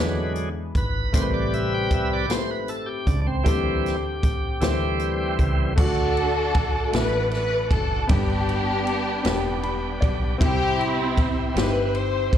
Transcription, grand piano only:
0, 0, Header, 1, 2, 480
1, 0, Start_track
1, 0, Tempo, 772201
1, 710, Time_signature, 6, 3, 24, 8
1, 7695, End_track
2, 0, Start_track
2, 0, Title_t, "Grand piano"
2, 0, Program_c, 0, 0
2, 0, Note_on_c, 0, 52, 53
2, 0, Note_on_c, 0, 56, 59
2, 0, Note_on_c, 0, 59, 56
2, 0, Note_on_c, 0, 62, 55
2, 0, Note_on_c, 0, 64, 55
2, 0, Note_on_c, 0, 71, 67
2, 99, Control_c, 0, 64, 127
2, 475, Note_off_c, 0, 56, 0
2, 477, Note_off_c, 0, 59, 0
2, 479, Note_off_c, 0, 62, 0
2, 481, Note_off_c, 0, 64, 0
2, 481, Note_off_c, 0, 71, 0
2, 686, Note_off_c, 0, 52, 0
2, 699, Note_on_c, 0, 57, 69
2, 705, Note_on_c, 0, 60, 70
2, 706, Note_on_c, 0, 64, 70
2, 708, Note_on_c, 0, 45, 60
2, 712, Note_on_c, 0, 67, 68
2, 718, Control_c, 0, 64, 0
2, 718, Note_on_c, 0, 70, 65
2, 755, Note_off_c, 0, 70, 0
2, 757, Note_on_c, 0, 71, 84
2, 835, Control_c, 0, 64, 127
2, 1193, Note_off_c, 0, 57, 0
2, 1197, Note_off_c, 0, 60, 0
2, 1197, Note_off_c, 0, 64, 0
2, 1200, Note_off_c, 0, 67, 0
2, 1222, Note_off_c, 0, 71, 0
2, 1405, Note_off_c, 0, 45, 0
2, 1421, Note_on_c, 0, 57, 58
2, 1425, Note_on_c, 0, 60, 54
2, 1429, Note_on_c, 0, 64, 59
2, 1433, Note_on_c, 0, 67, 57
2, 1437, Note_on_c, 0, 71, 54
2, 1474, Note_off_c, 0, 71, 0
2, 1478, Note_on_c, 0, 72, 64
2, 1914, Note_off_c, 0, 57, 0
2, 1916, Note_off_c, 0, 60, 0
2, 1919, Note_off_c, 0, 64, 0
2, 1920, Note_off_c, 0, 67, 0
2, 1943, Note_off_c, 0, 72, 0
2, 2145, Note_on_c, 0, 57, 71
2, 2150, Note_on_c, 0, 60, 69
2, 2152, Note_on_c, 0, 62, 70
2, 2153, Note_on_c, 0, 50, 61
2, 2158, Control_c, 0, 64, 0
2, 2159, Note_on_c, 0, 67, 67
2, 2163, Note_on_c, 0, 72, 84
2, 2267, Control_c, 0, 64, 127
2, 2636, Note_off_c, 0, 57, 0
2, 2639, Note_off_c, 0, 60, 0
2, 2640, Note_off_c, 0, 62, 0
2, 2643, Note_off_c, 0, 67, 0
2, 2645, Note_off_c, 0, 72, 0
2, 2846, Note_off_c, 0, 50, 0
2, 2864, Note_on_c, 0, 57, 74
2, 2868, Note_on_c, 0, 62, 70
2, 2871, Note_on_c, 0, 48, 68
2, 2874, Note_on_c, 0, 64, 67
2, 2875, Note_on_c, 0, 67, 64
2, 2877, Control_c, 0, 64, 0
2, 2884, Note_on_c, 0, 72, 83
2, 2983, Control_c, 0, 64, 127
2, 3356, Note_off_c, 0, 57, 0
2, 3358, Note_off_c, 0, 62, 0
2, 3361, Note_off_c, 0, 64, 0
2, 3361, Note_off_c, 0, 67, 0
2, 3366, Note_off_c, 0, 72, 0
2, 3565, Note_off_c, 0, 48, 0
2, 3579, Note_on_c, 0, 57, 83
2, 3588, Note_on_c, 0, 62, 71
2, 3592, Note_on_c, 0, 50, 66
2, 3599, Control_c, 0, 64, 0
2, 3600, Note_on_c, 0, 66, 84
2, 3699, Control_c, 0, 64, 127
2, 4073, Note_off_c, 0, 57, 0
2, 4077, Note_off_c, 0, 62, 0
2, 4083, Note_off_c, 0, 66, 0
2, 4285, Note_off_c, 0, 50, 0
2, 4298, Note_on_c, 0, 57, 69
2, 4310, Note_on_c, 0, 62, 58
2, 4319, Note_on_c, 0, 64, 72
2, 4792, Note_off_c, 0, 57, 0
2, 4798, Note_off_c, 0, 62, 0
2, 4802, Note_off_c, 0, 64, 0
2, 5018, Note_on_c, 0, 59, 79
2, 5027, Note_on_c, 0, 62, 76
2, 5028, Note_on_c, 0, 43, 65
2, 5037, Note_on_c, 0, 67, 92
2, 5038, Control_c, 0, 64, 0
2, 5128, Control_c, 0, 64, 127
2, 5512, Note_off_c, 0, 59, 0
2, 5516, Note_off_c, 0, 62, 0
2, 5521, Note_off_c, 0, 67, 0
2, 5723, Note_off_c, 0, 43, 0
2, 5737, Note_on_c, 0, 59, 81
2, 5747, Note_on_c, 0, 62, 73
2, 5754, Note_on_c, 0, 67, 89
2, 5991, Note_on_c, 0, 83, 69
2, 6212, Note_off_c, 0, 83, 0
2, 6220, Note_on_c, 0, 74, 71
2, 6230, Note_off_c, 0, 59, 0
2, 6235, Note_off_c, 0, 62, 0
2, 6239, Note_off_c, 0, 67, 0
2, 6446, Note_off_c, 0, 74, 0
2, 6454, Note_on_c, 0, 60, 83
2, 6465, Note_on_c, 0, 64, 77
2, 6467, Note_on_c, 0, 48, 69
2, 6473, Note_on_c, 0, 67, 93
2, 6475, Control_c, 0, 64, 0
2, 6581, Control_c, 0, 64, 127
2, 6948, Note_off_c, 0, 60, 0
2, 6954, Note_off_c, 0, 64, 0
2, 6958, Note_off_c, 0, 67, 0
2, 7161, Note_off_c, 0, 48, 0
2, 7174, Note_on_c, 0, 60, 67
2, 7182, Note_on_c, 0, 63, 50
2, 7192, Note_on_c, 0, 67, 74
2, 7224, Note_on_c, 0, 64, 63
2, 7225, Note_off_c, 0, 63, 0
2, 7668, Note_off_c, 0, 60, 0
2, 7677, Note_off_c, 0, 67, 0
2, 7693, Note_off_c, 0, 64, 0
2, 7695, End_track
0, 0, End_of_file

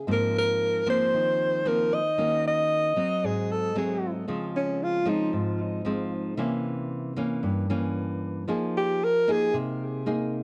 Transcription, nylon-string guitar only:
0, 0, Header, 1, 2, 480
1, 0, Start_track
1, 0, Key_signature, -4, "major"
1, 0, Tempo, 526316
1, 63, Time_signature, 4, 2, 24, 8
1, 9514, End_track
2, 0, Start_track
2, 0, Title_t, "Nylon-string guitar"
2, 0, Program_c, 0, 24
2, 63, Note_on_c, 0, 44, 64
2, 70, Note_on_c, 0, 53, 57
2, 73, Note_on_c, 0, 58, 50
2, 73, Note_on_c, 0, 60, 61
2, 747, Note_off_c, 0, 53, 0
2, 749, Note_off_c, 0, 60, 0
2, 750, Note_off_c, 0, 58, 0
2, 787, Note_on_c, 0, 53, 62
2, 788, Note_on_c, 0, 58, 60
2, 791, Note_on_c, 0, 60, 60
2, 1000, Note_off_c, 0, 44, 0
2, 1036, Note_on_c, 0, 51, 63
2, 1466, Note_off_c, 0, 58, 0
2, 1467, Note_off_c, 0, 53, 0
2, 1468, Note_off_c, 0, 60, 0
2, 1508, Note_on_c, 0, 53, 57
2, 1513, Note_on_c, 0, 60, 61
2, 1514, Note_on_c, 0, 58, 52
2, 1815, Note_off_c, 0, 53, 0
2, 1815, Note_off_c, 0, 60, 0
2, 1816, Note_off_c, 0, 58, 0
2, 1965, Note_off_c, 0, 51, 0
2, 1987, Note_on_c, 0, 51, 65
2, 1991, Note_on_c, 0, 58, 54
2, 1992, Note_on_c, 0, 61, 50
2, 1996, Note_on_c, 0, 66, 57
2, 2667, Note_off_c, 0, 58, 0
2, 2669, Note_off_c, 0, 66, 0
2, 2670, Note_off_c, 0, 61, 0
2, 2697, Note_off_c, 0, 51, 0
2, 2700, Note_on_c, 0, 54, 58
2, 2707, Note_on_c, 0, 60, 59
2, 2948, Note_on_c, 0, 44, 65
2, 3383, Note_off_c, 0, 54, 0
2, 3386, Note_off_c, 0, 60, 0
2, 3424, Note_on_c, 0, 54, 55
2, 3427, Note_on_c, 0, 57, 51
2, 3431, Note_on_c, 0, 60, 63
2, 3865, Note_off_c, 0, 54, 0
2, 3866, Note_off_c, 0, 57, 0
2, 3868, Note_off_c, 0, 60, 0
2, 3881, Note_off_c, 0, 44, 0
2, 3900, Note_on_c, 0, 49, 63
2, 3905, Note_on_c, 0, 53, 51
2, 3905, Note_on_c, 0, 56, 53
2, 3908, Note_on_c, 0, 60, 58
2, 4584, Note_off_c, 0, 56, 0
2, 4585, Note_off_c, 0, 53, 0
2, 4586, Note_off_c, 0, 60, 0
2, 4610, Note_on_c, 0, 53, 60
2, 4616, Note_on_c, 0, 56, 59
2, 4621, Note_on_c, 0, 60, 61
2, 4837, Note_off_c, 0, 49, 0
2, 4861, Note_on_c, 0, 44, 61
2, 5297, Note_off_c, 0, 53, 0
2, 5300, Note_off_c, 0, 56, 0
2, 5303, Note_off_c, 0, 60, 0
2, 5334, Note_on_c, 0, 53, 53
2, 5343, Note_on_c, 0, 56, 54
2, 5347, Note_on_c, 0, 60, 64
2, 5779, Note_off_c, 0, 53, 0
2, 5784, Note_off_c, 0, 56, 0
2, 5786, Note_off_c, 0, 60, 0
2, 5797, Note_off_c, 0, 44, 0
2, 5816, Note_on_c, 0, 52, 58
2, 5821, Note_on_c, 0, 48, 70
2, 5824, Note_on_c, 0, 58, 57
2, 5828, Note_on_c, 0, 61, 55
2, 6500, Note_off_c, 0, 52, 0
2, 6504, Note_off_c, 0, 58, 0
2, 6505, Note_off_c, 0, 61, 0
2, 6536, Note_on_c, 0, 52, 61
2, 6541, Note_on_c, 0, 58, 63
2, 6547, Note_on_c, 0, 61, 65
2, 6757, Note_off_c, 0, 48, 0
2, 6776, Note_on_c, 0, 43, 63
2, 6980, Note_off_c, 0, 52, 0
2, 6983, Note_off_c, 0, 58, 0
2, 6986, Note_off_c, 0, 61, 0
2, 7019, Note_on_c, 0, 52, 57
2, 7023, Note_on_c, 0, 58, 64
2, 7027, Note_on_c, 0, 61, 72
2, 7701, Note_off_c, 0, 52, 0
2, 7703, Note_off_c, 0, 58, 0
2, 7705, Note_off_c, 0, 61, 0
2, 7714, Note_off_c, 0, 43, 0
2, 7732, Note_on_c, 0, 53, 69
2, 7736, Note_on_c, 0, 58, 60
2, 7739, Note_on_c, 0, 63, 52
2, 7745, Note_on_c, 0, 68, 57
2, 8215, Note_off_c, 0, 58, 0
2, 8217, Note_off_c, 0, 63, 0
2, 8218, Note_off_c, 0, 68, 0
2, 8461, Note_on_c, 0, 58, 65
2, 8465, Note_on_c, 0, 63, 55
2, 8472, Note_on_c, 0, 68, 64
2, 8672, Note_off_c, 0, 53, 0
2, 8698, Note_on_c, 0, 48, 68
2, 9142, Note_off_c, 0, 58, 0
2, 9143, Note_off_c, 0, 63, 0
2, 9148, Note_off_c, 0, 68, 0
2, 9177, Note_on_c, 0, 58, 62
2, 9181, Note_on_c, 0, 63, 58
2, 9185, Note_on_c, 0, 68, 61
2, 9514, Note_off_c, 0, 48, 0
2, 9514, Note_off_c, 0, 58, 0
2, 9514, Note_off_c, 0, 63, 0
2, 9514, Note_off_c, 0, 68, 0
2, 9514, End_track
0, 0, End_of_file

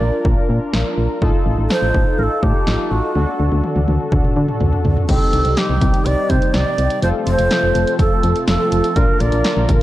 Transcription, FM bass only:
0, 0, Header, 1, 2, 480
1, 0, Start_track
1, 0, Tempo, 483871
1, 1209, Time_signature, 4, 2, 24, 8
1, 9748, End_track
2, 0, Start_track
2, 0, Title_t, "FM bass"
2, 0, Program_c, 0, 39
2, 10, Note_on_c, 0, 34, 104
2, 111, Note_off_c, 0, 34, 0
2, 247, Note_on_c, 0, 34, 102
2, 350, Note_off_c, 0, 34, 0
2, 489, Note_on_c, 0, 46, 97
2, 591, Note_off_c, 0, 46, 0
2, 728, Note_on_c, 0, 34, 101
2, 830, Note_off_c, 0, 34, 0
2, 968, Note_on_c, 0, 34, 98
2, 1070, Note_off_c, 0, 34, 0
2, 1208, Note_on_c, 0, 33, 106
2, 1310, Note_off_c, 0, 33, 0
2, 1447, Note_on_c, 0, 33, 102
2, 1550, Note_off_c, 0, 33, 0
2, 1568, Note_on_c, 0, 33, 94
2, 1670, Note_off_c, 0, 33, 0
2, 1808, Note_on_c, 0, 33, 89
2, 1910, Note_off_c, 0, 33, 0
2, 1929, Note_on_c, 0, 33, 102
2, 2031, Note_off_c, 0, 33, 0
2, 2169, Note_on_c, 0, 33, 99
2, 2271, Note_off_c, 0, 33, 0
2, 2409, Note_on_c, 0, 45, 102
2, 2510, Note_off_c, 0, 45, 0
2, 2649, Note_on_c, 0, 33, 97
2, 2751, Note_off_c, 0, 33, 0
2, 2890, Note_on_c, 0, 33, 95
2, 2991, Note_off_c, 0, 33, 0
2, 3130, Note_on_c, 0, 38, 108
2, 3231, Note_off_c, 0, 38, 0
2, 3369, Note_on_c, 0, 38, 108
2, 3471, Note_off_c, 0, 38, 0
2, 3490, Note_on_c, 0, 38, 99
2, 3591, Note_off_c, 0, 38, 0
2, 3729, Note_on_c, 0, 38, 100
2, 3830, Note_off_c, 0, 38, 0
2, 3849, Note_on_c, 0, 38, 99
2, 3951, Note_off_c, 0, 38, 0
2, 4087, Note_on_c, 0, 38, 97
2, 4190, Note_off_c, 0, 38, 0
2, 4330, Note_on_c, 0, 50, 93
2, 4431, Note_off_c, 0, 50, 0
2, 4570, Note_on_c, 0, 38, 98
2, 4671, Note_off_c, 0, 38, 0
2, 4810, Note_on_c, 0, 38, 99
2, 4911, Note_off_c, 0, 38, 0
2, 5048, Note_on_c, 0, 36, 113
2, 5150, Note_off_c, 0, 36, 0
2, 5288, Note_on_c, 0, 36, 96
2, 5390, Note_off_c, 0, 36, 0
2, 5408, Note_on_c, 0, 36, 95
2, 5510, Note_off_c, 0, 36, 0
2, 5649, Note_on_c, 0, 36, 98
2, 5751, Note_off_c, 0, 36, 0
2, 5769, Note_on_c, 0, 36, 103
2, 5870, Note_off_c, 0, 36, 0
2, 6008, Note_on_c, 0, 36, 96
2, 6110, Note_off_c, 0, 36, 0
2, 6249, Note_on_c, 0, 48, 102
2, 6351, Note_off_c, 0, 48, 0
2, 6488, Note_on_c, 0, 36, 106
2, 6590, Note_off_c, 0, 36, 0
2, 6729, Note_on_c, 0, 36, 100
2, 6830, Note_off_c, 0, 36, 0
2, 6969, Note_on_c, 0, 29, 116
2, 7070, Note_off_c, 0, 29, 0
2, 7209, Note_on_c, 0, 29, 103
2, 7311, Note_off_c, 0, 29, 0
2, 7330, Note_on_c, 0, 29, 98
2, 7431, Note_off_c, 0, 29, 0
2, 7571, Note_on_c, 0, 29, 96
2, 7672, Note_off_c, 0, 29, 0
2, 7691, Note_on_c, 0, 29, 101
2, 7792, Note_off_c, 0, 29, 0
2, 7927, Note_on_c, 0, 29, 101
2, 8030, Note_off_c, 0, 29, 0
2, 8171, Note_on_c, 0, 41, 101
2, 8272, Note_off_c, 0, 41, 0
2, 8411, Note_on_c, 0, 29, 90
2, 8512, Note_off_c, 0, 29, 0
2, 8651, Note_on_c, 0, 29, 91
2, 8752, Note_off_c, 0, 29, 0
2, 8889, Note_on_c, 0, 34, 112
2, 8990, Note_off_c, 0, 34, 0
2, 9131, Note_on_c, 0, 34, 111
2, 9232, Note_off_c, 0, 34, 0
2, 9251, Note_on_c, 0, 34, 93
2, 9352, Note_off_c, 0, 34, 0
2, 9490, Note_on_c, 0, 34, 96
2, 9591, Note_off_c, 0, 34, 0
2, 9610, Note_on_c, 0, 34, 104
2, 9711, Note_off_c, 0, 34, 0
2, 9748, End_track
0, 0, End_of_file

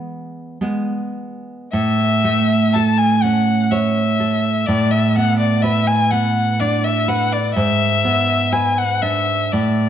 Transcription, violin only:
0, 0, Header, 1, 2, 480
1, 0, Start_track
1, 0, Key_signature, 3, "major"
1, 0, Tempo, 1121495
1, 735, Time_signature, 3, 2, 24, 8
1, 735, Tempo, 1016949
1, 1215, Tempo, 966184
1, 4095, Tempo, 1008403
1, 4743, End_track
2, 0, Start_track
2, 0, Title_t, "Violin"
2, 0, Program_c, 0, 40
2, 738, Note_on_c, 0, 76, 95
2, 1214, Note_on_c, 0, 81, 78
2, 1221, Note_off_c, 0, 76, 0
2, 1335, Note_on_c, 0, 80, 85
2, 1343, Note_off_c, 0, 81, 0
2, 1459, Note_on_c, 0, 78, 80
2, 1467, Note_off_c, 0, 80, 0
2, 1699, Note_on_c, 0, 76, 74
2, 1707, Note_off_c, 0, 78, 0
2, 2174, Note_on_c, 0, 74, 89
2, 2182, Note_off_c, 0, 76, 0
2, 2295, Note_on_c, 0, 76, 82
2, 2303, Note_off_c, 0, 74, 0
2, 2417, Note_on_c, 0, 78, 94
2, 2425, Note_off_c, 0, 76, 0
2, 2532, Note_off_c, 0, 78, 0
2, 2535, Note_on_c, 0, 74, 77
2, 2650, Note_on_c, 0, 76, 87
2, 2657, Note_off_c, 0, 74, 0
2, 2773, Note_on_c, 0, 80, 95
2, 2780, Note_off_c, 0, 76, 0
2, 2891, Note_on_c, 0, 78, 89
2, 2899, Note_off_c, 0, 80, 0
2, 3135, Note_on_c, 0, 74, 81
2, 3143, Note_off_c, 0, 78, 0
2, 3254, Note_on_c, 0, 76, 83
2, 3261, Note_off_c, 0, 74, 0
2, 3378, Note_on_c, 0, 78, 92
2, 3385, Note_off_c, 0, 76, 0
2, 3494, Note_on_c, 0, 74, 78
2, 3502, Note_off_c, 0, 78, 0
2, 3603, Note_off_c, 0, 74, 0
2, 3606, Note_on_c, 0, 76, 106
2, 4091, Note_on_c, 0, 80, 84
2, 4098, Note_off_c, 0, 76, 0
2, 4214, Note_on_c, 0, 78, 86
2, 4221, Note_off_c, 0, 80, 0
2, 4326, Note_on_c, 0, 76, 80
2, 4333, Note_off_c, 0, 78, 0
2, 4565, Note_on_c, 0, 74, 66
2, 4572, Note_off_c, 0, 76, 0
2, 4743, Note_off_c, 0, 74, 0
2, 4743, End_track
0, 0, End_of_file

